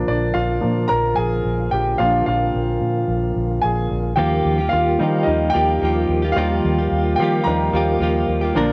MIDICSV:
0, 0, Header, 1, 5, 480
1, 0, Start_track
1, 0, Key_signature, -3, "major"
1, 0, Tempo, 546946
1, 1750, Time_signature, 4, 2, 24, 8
1, 7658, End_track
2, 0, Start_track
2, 0, Title_t, "Grand piano"
2, 0, Program_c, 0, 0
2, 0, Note_on_c, 0, 53, 47
2, 0, Note_on_c, 0, 58, 51
2, 0, Note_on_c, 0, 62, 60
2, 13, Control_c, 0, 64, 127
2, 71, Note_on_c, 0, 74, 80
2, 72, Note_off_c, 0, 62, 0
2, 72, Note_on_c, 0, 62, 58
2, 142, Note_off_c, 0, 53, 0
2, 145, Note_off_c, 0, 58, 0
2, 294, Note_off_c, 0, 62, 0
2, 297, Note_on_c, 0, 77, 83
2, 303, Note_on_c, 0, 65, 68
2, 317, Note_off_c, 0, 74, 0
2, 537, Note_on_c, 0, 53, 44
2, 539, Note_on_c, 0, 58, 42
2, 544, Note_on_c, 0, 62, 47
2, 753, Note_off_c, 0, 65, 0
2, 759, Note_off_c, 0, 53, 0
2, 760, Note_off_c, 0, 58, 0
2, 763, Note_off_c, 0, 62, 0
2, 772, Note_on_c, 0, 82, 92
2, 783, Note_on_c, 0, 70, 71
2, 798, Note_off_c, 0, 77, 0
2, 828, Note_off_c, 0, 82, 0
2, 838, Note_off_c, 0, 70, 0
2, 1017, Note_on_c, 0, 80, 91
2, 1028, Note_on_c, 0, 68, 72
2, 1475, Note_off_c, 0, 68, 0
2, 1503, Note_on_c, 0, 79, 83
2, 1518, Note_off_c, 0, 80, 0
2, 1521, Note_on_c, 0, 67, 65
2, 1558, Note_off_c, 0, 79, 0
2, 1574, Note_off_c, 0, 67, 0
2, 1739, Note_on_c, 0, 77, 86
2, 1748, Note_on_c, 0, 53, 52
2, 1749, Note_on_c, 0, 58, 46
2, 1754, Note_on_c, 0, 62, 55
2, 1754, Note_on_c, 0, 65, 72
2, 1973, Note_off_c, 0, 77, 0
2, 1975, Note_off_c, 0, 65, 0
2, 1986, Note_on_c, 0, 77, 76
2, 2005, Note_on_c, 0, 65, 56
2, 2434, Note_off_c, 0, 77, 0
2, 2445, Note_off_c, 0, 65, 0
2, 3173, Note_on_c, 0, 80, 84
2, 3197, Note_on_c, 0, 68, 60
2, 3628, Note_off_c, 0, 80, 0
2, 3634, Note_off_c, 0, 53, 0
2, 3635, Note_off_c, 0, 58, 0
2, 3637, Note_off_c, 0, 62, 0
2, 3640, Note_off_c, 0, 68, 0
2, 3650, Note_on_c, 0, 79, 91
2, 3677, Note_on_c, 0, 67, 62
2, 3680, Control_c, 0, 64, 0
2, 3839, Control_c, 0, 64, 127
2, 4106, Note_off_c, 0, 79, 0
2, 4116, Note_on_c, 0, 77, 83
2, 4120, Note_off_c, 0, 67, 0
2, 4149, Note_on_c, 0, 65, 62
2, 4376, Note_on_c, 0, 53, 46
2, 4380, Note_on_c, 0, 55, 49
2, 4387, Note_on_c, 0, 63, 58
2, 4589, Note_on_c, 0, 75, 74
2, 4596, Note_off_c, 0, 65, 0
2, 4613, Note_off_c, 0, 63, 0
2, 4626, Note_on_c, 0, 63, 57
2, 4628, Note_off_c, 0, 77, 0
2, 4648, Note_off_c, 0, 75, 0
2, 4680, Note_off_c, 0, 63, 0
2, 4702, Note_off_c, 0, 53, 0
2, 4704, Note_off_c, 0, 55, 0
2, 4824, Note_on_c, 0, 79, 102
2, 4862, Note_on_c, 0, 67, 67
2, 5546, Note_on_c, 0, 77, 93
2, 5551, Note_off_c, 0, 67, 0
2, 5577, Note_on_c, 0, 53, 49
2, 5583, Note_on_c, 0, 55, 50
2, 5584, Note_on_c, 0, 65, 76
2, 5585, Note_on_c, 0, 63, 51
2, 5589, Note_off_c, 0, 79, 0
2, 6268, Note_off_c, 0, 53, 0
2, 6271, Note_off_c, 0, 55, 0
2, 6272, Note_off_c, 0, 63, 0
2, 6272, Note_off_c, 0, 65, 0
2, 6281, Note_on_c, 0, 79, 86
2, 6310, Note_off_c, 0, 77, 0
2, 6315, Note_on_c, 0, 67, 68
2, 6517, Note_off_c, 0, 79, 0
2, 6527, Note_on_c, 0, 82, 90
2, 6535, Note_off_c, 0, 67, 0
2, 6545, Note_on_c, 0, 53, 41
2, 6552, Note_on_c, 0, 55, 43
2, 6555, Note_on_c, 0, 63, 50
2, 6559, Note_on_c, 0, 70, 63
2, 6763, Note_off_c, 0, 53, 0
2, 6767, Note_off_c, 0, 55, 0
2, 6768, Note_off_c, 0, 63, 0
2, 7222, Note_off_c, 0, 82, 0
2, 7239, Note_off_c, 0, 70, 0
2, 7504, Note_on_c, 0, 53, 52
2, 7510, Note_on_c, 0, 58, 47
2, 7515, Note_on_c, 0, 62, 61
2, 7519, Control_c, 0, 64, 0
2, 7658, Note_off_c, 0, 53, 0
2, 7658, Note_off_c, 0, 58, 0
2, 7658, Note_off_c, 0, 62, 0
2, 7658, End_track
3, 0, Start_track
3, 0, Title_t, "Clean electric guitar"
3, 0, Program_c, 1, 27
3, 3660, Note_on_c, 1, 51, 75
3, 3665, Note_on_c, 1, 53, 83
3, 3674, Note_on_c, 1, 58, 98
3, 3676, Note_on_c, 1, 65, 88
3, 3679, Note_on_c, 1, 67, 87
3, 4011, Note_off_c, 1, 67, 0
3, 4021, Note_on_c, 1, 67, 58
3, 4025, Note_off_c, 1, 51, 0
3, 4028, Note_off_c, 1, 53, 0
3, 4030, Note_off_c, 1, 65, 0
3, 4032, Note_off_c, 1, 58, 0
3, 4040, Note_on_c, 1, 65, 52
3, 4055, Note_on_c, 1, 58, 42
3, 4383, Note_off_c, 1, 58, 0
3, 4383, Note_on_c, 1, 53, 60
3, 4386, Note_off_c, 1, 67, 0
3, 4393, Note_off_c, 1, 65, 0
3, 4394, Note_on_c, 1, 58, 56
3, 4404, Note_on_c, 1, 65, 55
3, 4414, Note_on_c, 1, 67, 57
3, 4853, Note_off_c, 1, 53, 0
3, 4856, Note_on_c, 1, 53, 55
3, 4865, Note_off_c, 1, 58, 0
3, 4869, Note_on_c, 1, 58, 65
3, 4872, Note_off_c, 1, 65, 0
3, 4874, Note_off_c, 1, 67, 0
3, 4876, Note_on_c, 1, 65, 68
3, 4884, Note_on_c, 1, 67, 66
3, 5091, Note_off_c, 1, 53, 0
3, 5101, Note_off_c, 1, 58, 0
3, 5102, Note_on_c, 1, 53, 57
3, 5112, Note_on_c, 1, 58, 63
3, 5113, Note_off_c, 1, 65, 0
3, 5117, Note_off_c, 1, 67, 0
3, 5122, Note_on_c, 1, 65, 60
3, 5133, Note_on_c, 1, 67, 72
3, 5449, Note_off_c, 1, 67, 0
3, 5460, Note_on_c, 1, 67, 52
3, 5466, Note_off_c, 1, 53, 0
3, 5469, Note_off_c, 1, 65, 0
3, 5471, Note_off_c, 1, 58, 0
3, 5480, Note_on_c, 1, 65, 52
3, 5489, Note_on_c, 1, 58, 47
3, 5583, Note_on_c, 1, 51, 75
3, 5584, Note_off_c, 1, 58, 0
3, 5585, Note_off_c, 1, 67, 0
3, 5588, Note_off_c, 1, 65, 0
3, 5591, Note_on_c, 1, 53, 90
3, 5595, Note_on_c, 1, 58, 92
3, 5598, Note_on_c, 1, 65, 102
3, 5604, Note_on_c, 1, 67, 94
3, 5942, Note_off_c, 1, 67, 0
3, 5947, Note_off_c, 1, 51, 0
3, 5950, Note_off_c, 1, 53, 0
3, 5952, Note_off_c, 1, 58, 0
3, 5953, Note_on_c, 1, 67, 59
3, 5954, Note_off_c, 1, 65, 0
3, 5970, Note_on_c, 1, 65, 54
3, 5980, Note_on_c, 1, 58, 46
3, 6311, Note_off_c, 1, 67, 0
3, 6316, Note_off_c, 1, 58, 0
3, 6316, Note_on_c, 1, 53, 70
3, 6320, Note_off_c, 1, 65, 0
3, 6326, Note_on_c, 1, 58, 66
3, 6337, Note_on_c, 1, 65, 65
3, 6347, Note_on_c, 1, 67, 76
3, 6785, Note_off_c, 1, 53, 0
3, 6789, Note_on_c, 1, 53, 62
3, 6799, Note_off_c, 1, 58, 0
3, 6802, Note_on_c, 1, 58, 64
3, 6807, Note_off_c, 1, 65, 0
3, 6808, Note_off_c, 1, 67, 0
3, 6811, Note_on_c, 1, 65, 71
3, 6818, Note_on_c, 1, 67, 71
3, 7016, Note_off_c, 1, 53, 0
3, 7027, Note_on_c, 1, 53, 61
3, 7028, Note_off_c, 1, 58, 0
3, 7032, Note_off_c, 1, 65, 0
3, 7038, Note_on_c, 1, 58, 57
3, 7041, Note_off_c, 1, 67, 0
3, 7043, Note_on_c, 1, 65, 71
3, 7051, Note_on_c, 1, 67, 64
3, 7374, Note_off_c, 1, 67, 0
3, 7385, Note_on_c, 1, 67, 57
3, 7388, Note_off_c, 1, 53, 0
3, 7389, Note_off_c, 1, 65, 0
3, 7394, Note_off_c, 1, 58, 0
3, 7400, Note_on_c, 1, 65, 50
3, 7414, Note_on_c, 1, 58, 52
3, 7506, Note_on_c, 1, 46, 88
3, 7507, Note_off_c, 1, 67, 0
3, 7509, Note_off_c, 1, 58, 0
3, 7512, Note_on_c, 1, 50, 91
3, 7514, Note_off_c, 1, 65, 0
3, 7516, Note_on_c, 1, 53, 88
3, 7520, Note_on_c, 1, 58, 97
3, 7523, Note_on_c, 1, 62, 99
3, 7528, Note_on_c, 1, 70, 99
3, 7658, Note_off_c, 1, 46, 0
3, 7658, Note_off_c, 1, 50, 0
3, 7658, Note_off_c, 1, 53, 0
3, 7658, Note_off_c, 1, 58, 0
3, 7658, Note_off_c, 1, 62, 0
3, 7658, Note_off_c, 1, 70, 0
3, 7658, End_track
4, 0, Start_track
4, 0, Title_t, "Tonewheel organ"
4, 0, Program_c, 2, 16
4, 0, Note_on_c, 2, 50, 65
4, 0, Note_on_c, 2, 53, 59
4, 0, Note_on_c, 2, 58, 54
4, 0, Note_on_c, 2, 65, 66
4, 3633, Note_off_c, 2, 58, 0
4, 3634, Note_off_c, 2, 65, 0
4, 3635, Note_off_c, 2, 50, 0
4, 3636, Note_off_c, 2, 53, 0
4, 3680, Note_on_c, 2, 58, 54
4, 3683, Note_on_c, 2, 55, 60
4, 3683, Note_on_c, 2, 65, 70
4, 3685, Note_on_c, 2, 51, 58
4, 7480, Note_off_c, 2, 55, 0
4, 7481, Note_off_c, 2, 51, 0
4, 7503, Note_on_c, 2, 50, 63
4, 7506, Note_on_c, 2, 53, 62
4, 7658, Note_off_c, 2, 50, 0
4, 7658, Note_off_c, 2, 53, 0
4, 7658, Note_off_c, 2, 58, 0
4, 7658, Note_off_c, 2, 65, 0
4, 7658, End_track
5, 0, Start_track
5, 0, Title_t, "Fingered electric bass"
5, 0, Program_c, 3, 33
5, 73, Note_on_c, 3, 34, 98
5, 268, Note_off_c, 3, 34, 0
5, 310, Note_on_c, 3, 34, 97
5, 507, Note_off_c, 3, 34, 0
5, 557, Note_on_c, 3, 46, 90
5, 751, Note_off_c, 3, 46, 0
5, 799, Note_on_c, 3, 34, 95
5, 992, Note_off_c, 3, 34, 0
5, 1032, Note_on_c, 3, 34, 86
5, 1228, Note_off_c, 3, 34, 0
5, 1273, Note_on_c, 3, 34, 85
5, 1468, Note_off_c, 3, 34, 0
5, 1511, Note_on_c, 3, 34, 90
5, 1707, Note_off_c, 3, 34, 0
5, 1753, Note_on_c, 3, 34, 86
5, 1948, Note_off_c, 3, 34, 0
5, 1995, Note_on_c, 3, 34, 83
5, 2190, Note_off_c, 3, 34, 0
5, 2236, Note_on_c, 3, 34, 96
5, 2430, Note_off_c, 3, 34, 0
5, 2466, Note_on_c, 3, 46, 79
5, 2664, Note_off_c, 3, 46, 0
5, 2704, Note_on_c, 3, 34, 90
5, 2903, Note_off_c, 3, 34, 0
5, 2949, Note_on_c, 3, 34, 102
5, 3147, Note_off_c, 3, 34, 0
5, 3195, Note_on_c, 3, 34, 89
5, 3390, Note_off_c, 3, 34, 0
5, 3434, Note_on_c, 3, 34, 92
5, 3629, Note_off_c, 3, 34, 0
5, 3668, Note_on_c, 3, 39, 84
5, 3866, Note_off_c, 3, 39, 0
5, 3905, Note_on_c, 3, 39, 84
5, 4104, Note_off_c, 3, 39, 0
5, 4149, Note_on_c, 3, 39, 104
5, 4346, Note_off_c, 3, 39, 0
5, 4390, Note_on_c, 3, 51, 84
5, 4587, Note_off_c, 3, 51, 0
5, 4624, Note_on_c, 3, 39, 88
5, 4823, Note_off_c, 3, 39, 0
5, 4871, Note_on_c, 3, 39, 94
5, 5067, Note_off_c, 3, 39, 0
5, 5107, Note_on_c, 3, 39, 91
5, 5305, Note_off_c, 3, 39, 0
5, 5342, Note_on_c, 3, 39, 91
5, 5542, Note_off_c, 3, 39, 0
5, 5584, Note_on_c, 3, 39, 101
5, 5783, Note_off_c, 3, 39, 0
5, 5829, Note_on_c, 3, 39, 101
5, 6026, Note_off_c, 3, 39, 0
5, 6065, Note_on_c, 3, 39, 98
5, 6263, Note_off_c, 3, 39, 0
5, 6309, Note_on_c, 3, 51, 93
5, 6506, Note_off_c, 3, 51, 0
5, 6549, Note_on_c, 3, 39, 89
5, 6746, Note_off_c, 3, 39, 0
5, 6784, Note_on_c, 3, 39, 92
5, 6983, Note_off_c, 3, 39, 0
5, 7026, Note_on_c, 3, 39, 95
5, 7224, Note_off_c, 3, 39, 0
5, 7268, Note_on_c, 3, 39, 78
5, 7465, Note_off_c, 3, 39, 0
5, 7506, Note_on_c, 3, 34, 93
5, 7658, Note_off_c, 3, 34, 0
5, 7658, End_track
0, 0, End_of_file